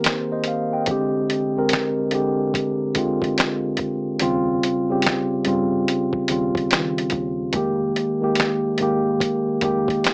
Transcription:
Already playing: D#3 A#3 C4 G4 A#4
0.04 C5, finger snap, snare, closed hi-hat
0.32 C5 D#5
0.44 closed hi-hat
0.48 F5
0.73 D#5 G5
0.86 D3 G#3 C4, kick, closed hi-hat
0.91 G4
1.30 closed hi-hat
1.56 D3 G#3 C4 A#4
1.69 closed hi-hat
1.73 finger snap, snare
2.11 D3 G#3 C4 G4, closed hi-hat
2.54 kick, closed hi-hat
2.95 D3 G#3 C4 F4, kick, closed hi-hat
3.22 kick, closed hi-hat
3.38 finger snap, snare, closed hi-hat
3.77 kick, closed hi-hat
4.19 D#2 C#3 G3 C4 F4, closed hi-hat
4.63 closed hi-hat
4.89 C#3 G3 C4 G4
5.02 closed hi-hat
5.06 finger snap, snare
5.45 G2 C#3 G3 C4 F4, closed hi-hat
5.88 closed hi-hat
6.13 muted fingered electric bass stroke, kick
6.28 D#2 C#3 G3 C4 F4, closed hi-hat
6.55 kick, closed hi-hat
6.71 D#3, finger snap, snare, closed hi-hat
6.98 closed hi-hat
7.10 D#2, kick, closed hi-hat
7.53 F1 D#3 G#3 A#3 G4, kick, closed hi-hat
7.96 closed hi-hat
8.21 D#3 G#3 A#3 G4
8.35 closed hi-hat
8.40 finger snap, snare
8.78 G#1 D#3 G#3 A#3, closed hi-hat
8.82 G4
9.20 kick, closed hi-hat
9.48 muted fingered electric bass stroke
9.61 F1 D#3 G#3 A#3 G4, kick, closed hi-hat
9.88 kick, closed hi-hat
10.04 finger snap, snare, closed hi-hat

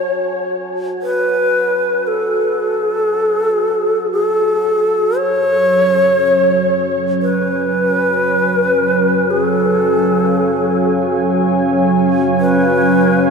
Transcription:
Already playing: F#4 C#5 G#5 A5
1.02 B4
2.07 A4
4.12 A4
5.18 F#3 C#5
5.64 C#4
7.22 B4 G#5
7.62 C#5
9.30 G#4
9.44 A4
9.72 F5
12.40 B4

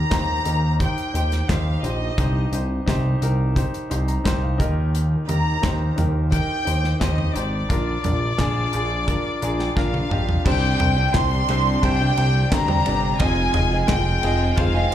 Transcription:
Already playing: A#2 D#4 G4 A#4 A#5
0.10 D#2 D#4 G4 C5, kick, snare, clap, closed hi-hat
0.45 D#2 D#4 G4 A#4, closed hi-hat
0.79 D#4 G4 C5 G5, kick, closed hi-hat
0.98 closed hi-hat
1.14 D#2 D#4 G4 C5, closed hi-hat
1.32 snare, closed hi-hat
1.49 D#2 D#4 G4 C5 F5, kick, snare, clap, closed hi-hat
1.83 A#1 D#4 G4 C5 D#5, closed hi-hat
2.18 C2 G2 D#4 G4 C5, kick, closed hi-hat
2.52 C2 D#4 G4 C5, closed hi-hat
2.86 C2 D#4 G4 C5, kick, snare, clap, closed hi-hat
3.22 C2 D#4 G4 A#4, closed hi-hat
3.56 D#4 G4 C5, kick, closed hi-hat
3.74 closed hi-hat
3.90 C2 D#4 G4 C5 C6, closed hi-hat
4.08 A#5, closed hi-hat
4.24 C2 D#4 G4 C5 G5, kick, snare, clap, closed hi-hat
4.43 F5
4.58 D#2 A#2 D#4 G4 A#4 D#5, kick, closed hi-hat
4.95 closed hi-hat
5.27 D#2 D#4 G4 A#4 A#5, closed hi-hat, floor tom
5.62 D#2 D#4 G4 C5, kick, snare, clap, closed hi-hat
5.96 D#2 D#4 G4 A#4, closed hi-hat, floor tom
6.31 D#4 G4 A#4 G5, kick, closed hi-hat
6.65 D#2 D#4 G4 C5, closed hi-hat
6.84 snare
7.00 D#2 D#4 G4 C5 D#5, kick, snare, clap, closed hi-hat
7.18 floor tom
7.34 G#1 D#4 G4 C5 D5, closed hi-hat
7.69 A#1 D4 F4 A#4, kick, closed hi-hat
8.04 A#1 D4 F4 A#4, closed hi-hat, floor tom
8.38 A#1 D4 F4 G#4, kick, snare, clap, closed hi-hat
8.72 A#1 D4 F4 G#4, closed hi-hat
9.07 D4 F4 A#4, kick, closed hi-hat
9.41 A#1 D4 F4 G#4 A#5, closed hi-hat
9.59 G5, snare
9.76 A#1 D4 F4 A#4 F5, kick, snare
9.94 high tom
10.10 A#1 D4 F4 G4 D#5, mid tom
10.29 floor tom
10.44 C2 G2 C3 D3 G3 C4 D4 G4 C5 G5, kick, crash
10.79 C2 D4 G4 C5, floor tom, ride
10.96 C4 D4 G4
11.14 C2 D4 G4 C5 C6, kick, snare, clap, ride
11.48 C2 C3 G3 C4 D4 G4 C5, ride
11.82 C2 D4 G4 C5 G5, kick, ride
12.00 C4 D4 G4
12.17 C2 D4 G4 C5, ride
12.51 D2 D4 G4 C5 A#5, kick, snare, clap, ride
12.68 C3 G3 C4 D4 G4, floor tom
12.85 G1 D4 G4 D5, ride
13.19 F1 C3 F3 G#3 C4 D#4 F4 G#4 D#5 G#5, kick, ride
13.53 F1 F4 G#4 D#5, floor tom, ride
13.71 C4 D#4 G#4
13.87 F1 F4 G#4 D#5 G5, kick, snare, clap, ride
14.22 F1 F3 C4 D#4 F4 G#4 D#5, ride
14.56 F1 F4 G#4 C5 F5, kick, ride
14.75 C4 D#4 G#4
14.91 F4

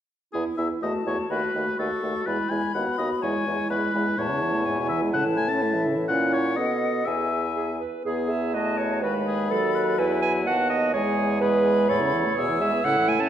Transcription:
0.33 E2 B3 E4 G#4
0.57 E2 B3 E4 E5
0.81 E2 A3 F#4 D#5 A5
1.05 E2 A3 F#4 C#5
1.30 D#2 A3 F#4 B4 B5
1.54 D#2 A3 F#4
1.78 D#2 A3 F#4 A4 C#6
2.02 D#2 A3 F#4
2.26 E2 G#3 E4 B4 B5
2.50 E2 G#3 E4 G#5
2.74 D#2 B3 F#4 F#5
2.98 D#2 B3 F#4 D#5
3.22 E2 G#3 E4 C#5 G#5
3.46 E2 G#3 E4
3.70 E2 G#3 E4 B4 B5
3.94 E2 G#3 E4
4.18 E2 A2 E4 C#5 A5
4.30 C#3
4.42 E3
4.54 A3
4.66 G#2 G#5
4.77 B2
4.89 E3 E5
5.03 G#3
5.13 A2 C#3 F#5 A5
5.26 E3
5.37 A3 G#5
5.48 C#4 A5
5.62 A3 E5
5.74 E3
5.86 C#3
5.97 E3
6.08 A#2 C#4 E4 F#5
6.33 C#5
6.56 B2 B3 A4 D#5
7.05 E2 B3 G#4 E5 G#5
7.55 G#4
7.80 B4
8.05 E2 B3 G#4
8.29 E5
8.54 A3 F#4 D#5 A5
8.78 C#5
9.02 D#2 G#3 F#4 B4 B5
9.27 G#4
9.50 F#3 A4
9.75 B4
9.98 E2 E4 B4 G#5
10.22 G#5
10.46 D#2 B3 F#4 F#5 A5
10.70 D#5
10.93 E2 G#3 G#4 C#5 G#5
11.41 G#3 G#4 B4 B5
11.89 E2 A2 A4 C#5
12.01 C#3
12.13 E3
12.25 A3
12.36 E2 B2 G#4 E6
12.49 E3
12.61 G#3 E5
12.73 B3
12.84 A2 C#3 E4 F#5
12.97 E3
13.08 A3 G#5
13.20 C#4 A5

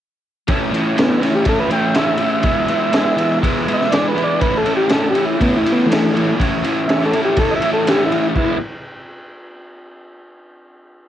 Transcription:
0.47 A2 E3 A3 C#4 E4, kick, ride
0.71 A2 E3 A3 C#4 E4, ride
0.96 A2 E3 A3 B3 C#4 E4, snare, ride
1.20 A2 E3 A3 C#4 E4, snare, ride
1.25 E4
1.35 G4
1.45 A2 E3 A3 C#4 E4 A4, kick, ride
1.60 B4
1.69 A2 E3 A3 C#4 E4 G5, ride
1.95 A2 E3 A3 C#4 E4 E5, snare, ride
2.18 A2 E3 A3 C#4, ride
2.23 E4
2.43 E3 G#3 B3 E4, kick, ride
2.68 E3 G#3 B3 E4, ride
2.92 E3 G#3 B3 E4, snare, ride
3.17 E3 G#3 B3 E4, ride
3.41 E3 G#3 B3 E4, kick, ride
3.67 E3 G#3 B3 E4, ride
3.74 D#5
3.78 E5, snare
3.91 E3 G#3 B3 E4 D5, snare, ride
4.08 B4
4.15 E3 G#3 B3 E4, ride
4.24 D5
4.40 A2 E3 A3 C#4 E4 B4, kick, ride
4.57 A4
4.64 A2 E3 A3 C#4 E4, ride
4.77 G4
4.89 A2 E3 A3 C#4 E4 A4, snare, ride
5.10 G4
5.15 A2 E3 A3 C#4 E4, ride
5.25 E4
5.40 A2 E3 A3 B3 C#4 E4, kick, ride
5.56 E4
5.65 A2 E3 A3 C#4 E4, ride
5.72 B3
5.86 E3 A3
5.90 A2 E3 A3 C#4 E4, snare, ride
6.14 A2 E3 A3 C#4 E4, ride
6.38 A2 E3 A3 C#4 E4, kick, ride
6.63 A2 E3 A3 C#4 E4, ride
6.88 A2 E3 A3 C#4 E4 E5, snare, ride
7.06 A4
7.12 A2 E3 A3 C#4 E4, ride
7.25 G4
7.37 A2 E3 A3 C#4 A4, kick, ride
7.41 E4
7.51 D#5
7.56 E5
7.61 A2 E3 A3 C#4 E4, ride
7.73 A4
7.87 A2 E3 A3 C#4 E4 G4, snare, ride
8.06 E4
8.12 A2 E3 A3 C#4 E4, ride
8.36 E3 G#3 B3 E4, kick, crash

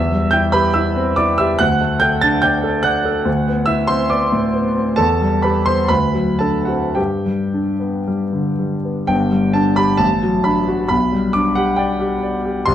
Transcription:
Already playing: E2 E5 E6
0.12 G3
0.31 E4 G5 G6
0.52 G4 B4 B5
0.74 E4 E5 E6
0.96 C4
1.16 E4 D5 D6
1.38 G4 E5 E6
1.59 D2 F#5 F#6
1.81 A3
2.00 A4 G5 G6
2.21 D4 A5 A6
2.42 D5 G5 G6
2.64 A4
2.83 D5 F#5 F#6
3.05 A4
3.25 D2
3.47 B3
3.66 E4 E5 E6
3.87 C4 C5 C6
4.10 B3 D5 D6
4.32 A2
4.54 B3
4.76 C4
4.96 E2 A4 A5
5.21 G3
5.42 G4 B4 B5
5.66 B3 C5 C6
5.88 D2 B4 B5
6.14 F#3
6.39 D4 A4 A5
6.65 C4 F#4 F#5
6.95 G2 G4 G5
7.25 G3
7.54 D4
7.80 B3
8.07 G3
8.33 D3
8.59 G3
8.84 B3
9.07 G1 G2 G5
9.31 G3
9.53 D4 A5
9.76 G4 B5
9.97 A1 A5
10.23 F#3
10.44 D4 B5
10.68 F#4
10.88 B1 B5
11.12 G3
11.33 D4 D6
11.55 G4 F#5
11.76 D5 G5
12.00 G4
12.23 D5
12.45 G4
12.66 C2 C6

